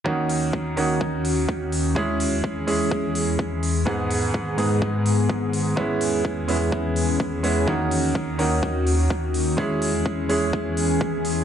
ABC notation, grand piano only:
X:1
M:4/4
L:1/8
Q:1/4=126
K:D#phr
V:1 name="Grand piano"
[D,A,CDF]3 [D,A,CDF] z4 | [G,CEG]3 [G,CEG] z4 | [G,,G,B,DG]3 [G,,G,B,DG] z4 | [G,B,CE]3 [G,B,CE] z3 [G,B,CE] |
[D,A,CDF]3 [D,A,CDF] z4 | [G,CEG]3 [G,CEG] z4 |]